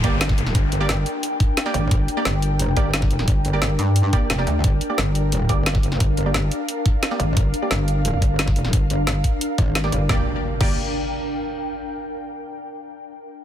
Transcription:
Already playing: D4 A#4 G5, downlifter
0.04 A#3 G4 D5, kick, closed hi-hat
0.21 snare, closed hi-hat
0.29 kick, snare
0.38 closed hi-hat
0.46 snare
0.55 G1, kick, closed hi-hat
0.72 closed hi-hat
0.80 A#3 G4 D5
0.89 snare, closed hi-hat
1.06 closed hi-hat
1.23 closed hi-hat
1.40 kick, closed hi-hat
1.57 snare, closed hi-hat
1.66 A#3 G4 D5, snare
1.74 G#1, closed hi-hat
1.91 G1, kick, closed hi-hat
2.08 closed hi-hat
2.17 A#3 G4 D5
2.25 G1, snare, closed hi-hat
2.42 closed hi-hat
2.59 closed hi-hat
2.77 G1 A#3 G4 D5, kick, closed hi-hat
2.94 snare, closed hi-hat
3.02 kick, snare
3.11 closed hi-hat
3.19 snare
3.28 G1, kick, closed hi-hat
3.45 closed hi-hat
3.53 A#3 G4 D5
3.62 snare, closed hi-hat
3.79 G2, closed hi-hat
3.96 closed hi-hat
4.13 A#3 G4 D5, kick, closed hi-hat
4.30 F1, snare, closed hi-hat
4.38 A#3 G4 D5, snare
4.47 D2, closed hi-hat
4.64 G1, kick, closed hi-hat
4.81 closed hi-hat
4.90 A#3 G4 D5
4.98 G1, snare, closed hi-hat
5.04 F5
5.15 closed hi-hat
5.32 closed hi-hat
5.49 A#3 G4 D5, kick, closed hi-hat
5.66 snare, closed hi-hat
5.75 kick, snare
5.83 closed hi-hat
5.92 snare
6.00 G1, kick, closed hi-hat
6.17 closed hi-hat
6.26 A#3 G4 D5
6.34 snare, closed hi-hat
6.51 closed hi-hat
6.69 closed hi-hat
6.86 kick, closed hi-hat
7.03 snare, closed hi-hat
7.11 A#3 G4 D5, snare
7.20 G#1, closed hi-hat
7.37 G1, kick, closed hi-hat
7.54 closed hi-hat
7.62 A#3 G4 D5
7.71 G1, snare, closed hi-hat
7.88 closed hi-hat
8.05 closed hi-hat
8.22 G1, kick, closed hi-hat
8.39 snare, closed hi-hat
8.47 kick, snare
8.56 closed hi-hat
8.65 snare
8.73 G1, kick, closed hi-hat
8.90 closed hi-hat
9.07 snare, closed hi-hat
9.24 kick, closed hi-hat
9.41 closed hi-hat
9.58 G#1, kick, closed hi-hat
9.75 snare, closed hi-hat
9.84 A#3 G4 D5, snare
9.92 G1, closed hi-hat
10.09 A#3 D4 G4 D5, kick, snare, impact
10.15 A#4
10.20 G5
10.61 G1 A#3 G4 D5, kick, crash

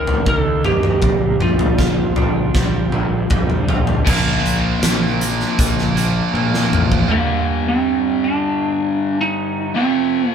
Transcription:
Already playing: D#2 D#3 A#3 D#4 G4 A#4
0.07 floor tom
0.26 D#2 A#3 A4, kick
0.64 G4, mid tom
0.83 mid tom
1.02 A#1 A#2, kick, floor tom
1.39 A#1 G3 F4, mid tom
1.59 floor tom
1.78 A#1 F4, kick, snare
2.16 A#1 D4, floor tom
2.54 A#1 G3, kick, snare
2.92 A#1 D3, high tom
3.30 A#1 G3, kick, mid tom
3.50 mid tom
3.69 F4, floor tom
3.87 floor tom
4.05 A#1 A#2 F3, kick, crash
4.09 A#3
4.44 A#1, closed hi-hat
4.82 A#1, snare, closed hi-hat
5.21 closed hi-hat
5.40 snare
5.59 A#1, kick, closed hi-hat
5.78 snare
5.96 A#2 F3 A#3, closed hi-hat
6.33 A#2 F3 A#3, high tom
6.54 snare
6.71 A1, mid tom
6.92 kick
7.08 G2 D3 G3 A#3
7.68 C4
8.24 D4
9.21 D#4
9.74 F2 C3 F3 C4
10.28 A#3

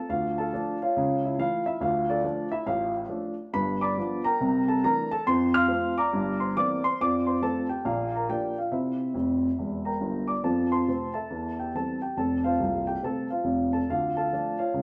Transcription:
0.09 D2 D3 F4 F5
0.38 A4 F5 A5
0.53 F3 A3 D4
0.82 F4 C#5 F5
0.96 C#2 C#3
1.25 E4 E5
1.38 E3 A3 E4 F4 F5
1.66 E4 E5
1.81 D2 D3 F4 F5
2.10 D4 A4 D5
2.24 F3 A3 D4
2.52 E4 E5
2.66 A1 A2 F4 F5
3.09 F3 A3 D4
3.53 G1 G2 B4 B5
3.81 D5 B5 D6
3.97 F3 B3 D4
4.24 A#4 G5 A#5
4.40 C2 C3
4.68 A4 A5
4.84 E3 A3 D4 A#4 A#5
5.11 A4 A5
5.26 F2 F3 C5 C6
5.54 F5 C6 F6
5.68 F3 A3 C4
5.98 D5 A#5 D6
6.13 G1 G2
6.40 C5 C6
6.56 E3 A#3 C4 D5 D6
6.84 C5 C6
7.01 F2 F3 D5 D6
7.27 C5 C6
7.42 F3 A3 C4 A4 A5
7.69 G4 G5
7.85 A#1 A#2 F4 D5 F5
8.16 A#4 A#5
8.29 F3 A#3 D4 G4 D5 G5
8.58 F4 F5
8.72 C3 E4 C5 E5
9.14 F1 F2
9.59 E1 E2
9.85 A#4 G5 A#5
10.01 G1 G2
10.28 D5 D6
10.43 F2 F3 A4 A5
10.72 C5 A5 C6
10.88 C3 A3 C4
11.14 A4 E5 A5
11.30 E2 E3
11.59 G4 G5
11.75 E3 G3 C4 A4 A5
12.02 G4 G5
12.17 F1 F2 A4 A5
12.44 F4 C5 F5
12.60 C1 C2
12.87 G4 G5
13.03 C3 A3 C4 A4 A5
13.30 F4 C5 F5
13.44 F1 F2
13.73 A4 A5
13.89 D2 D3 F4 F5
14.17 A4 F5 A5
14.33 F3 A3 D4
14.59 F4 C#5 F5
14.74 C#2 C#3

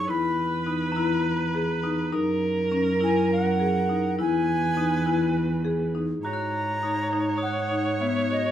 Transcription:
Already playing: C#6
0.07 E2 E4 B4 B5
0.67 D#4
0.92 A#5
0.96 E4
1.55 G#4
1.84 D#4
2.12 F#2 D#4 A#4
2.72 C#4
3.00 E4 G#5
3.32 F#5
3.60 G#4
3.89 D#4
4.18 E2 E4 B4 G#5
4.77 D#4
5.06 E4
5.65 G#4
5.95 D#4
6.23 G#2 F#4 C#5 A#5
6.33 F#6
6.83 D#4
7.13 D#4
7.38 D#6
7.42 F#5 F#6
7.71 D#4
8.00 B3 E5
8.30 F#4 D#5

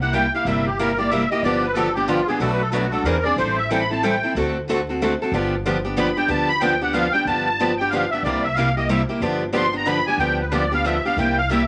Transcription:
Already playing: C2
0.01 A#3 E4 G4 F#5
0.13 C3 G3 A#3 E4 G4 G5
0.34 A#3 E4 G4 F5
0.45 G1 C3 G3 A#3 E4 G4 E5
0.66 G4
0.79 C3 G3 A#3 E4 G4 A#4
0.98 A#3 E4 G4 D5
1.10 C3 G3 A#3 E4 G4 E5
1.30 A#3 E4 G4 D#5
1.43 G1 D3 F3 B3 D4 G4 D5
1.63 B4
1.74 D3 F3 B3 D4 G4 A4
1.94 B3 D4 G4
2.08 D3 F3 B3 D4 F4 G4
2.27 B3 D4 G4 G#4
2.40 B1 B2 F#3 A3 D4 F#4 A4 B4
2.53 B4
2.62 A4
2.72 B2 F#3 A3 D4 F#4 B4
2.91 A3 D4 F#4 A4
3.04 E2 E3 C4 D4 G#4 A#4 D5
3.23 C4 D4 G#4 D5
3.36 A1 E3 G3 C4 E4 A4 C5
3.57 E5
3.69 E3 G3 C4 E4 A4 G5
3.80 B5
3.90 C4 E4 A4 A5
4.03 E3 G3 C4 E4 A4 G5
4.23 C4 E4 A4
4.35 D2 D3 A3 C4 F#4 A4
4.69 D3 A3 C4 F#4 A4
4.89 C4 F#4 A4
5.02 D3 A3 C4 F#4 A4
5.22 C4 F#4 A4
5.32 G1 D3 F3 B3 D4 G4
5.65 D3 F3 B3 D4 G4
5.85 B3 D4 G4
5.96 D3 F3 B3 D4 G4 B5
6.17 B3 D4 G4 G5
6.28 D2 D3 F3 B3 D4 G4 A5
6.48 B5
6.61 D3 F3 B3 D4 G4 G5
6.81 B3 D4 G4 F#5
6.93 D3 F3 B3 D4 G4 F5
7.12 B3 D4 G4 G5
7.25 G1 D3 F3 B3 D4 G4 A5
7.60 D3 F3 B3 D4 G4
7.78 D4 G4 G5
7.82 B3
7.90 D3 F3 B3 D4 G4 F5
8.10 D4 G4 E5
8.14 B3
8.23 C2 C3 G3 A#3 E4 G4 D5
8.43 E5
8.55 C3 G3 A#3 E4 F5
8.59 G4
8.76 A#3 E4 G4 D#5
8.89 C3 G3 A#3 E4 G4 E5
9.09 A#3 E4 G4
9.20 G1 D3 F3 B3 D4 G4
9.52 D3 F3 B3 D4 G4 C6
9.72 B3 D4 G4
9.77 A#5
9.86 D3 F3 B3 D4 G4 B5
10.07 B3 D4 G4 G#5
10.18 D2 D3 F3 B3 D4 G4 G5
10.41 B4
10.52 D3 F3 B3 D4 G4 D5
10.72 B3 D4 G4 F5
10.85 D3 F3 B3 D4 G4 E5
11.05 B3 D4 G4 F5
11.17 C2 C3 G3 A#3 E4 G4 G5
11.38 F5
11.50 C3 G3 A#3 E4 G4 E5

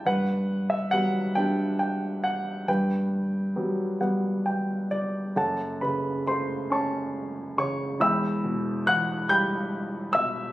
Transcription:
0.05 G2 B4 F#5
0.70 E5
0.91 F#3 G3 B3 F#5
1.35 G3 B3 D4 G5
1.79 G5
2.24 F#5
2.68 G2 B4 G5
3.56 F#3 G3 B3
4.00 G3 B3 F#5
4.46 G5
4.91 D5
5.36 F#1 F#2 A4 C#5 F#5 A5
5.81 C#3 B4 B5
6.26 A3 C5 C6
6.70 C#4 C#5 A5 C#6
7.58 C#3 C#5 C#6
8.00 E1 E2 E5 G5 B5 E6
8.44 B2
8.86 E3 F#5 F#6
9.29 G3 G5 B5 G6
10.13 B2 E5 E6

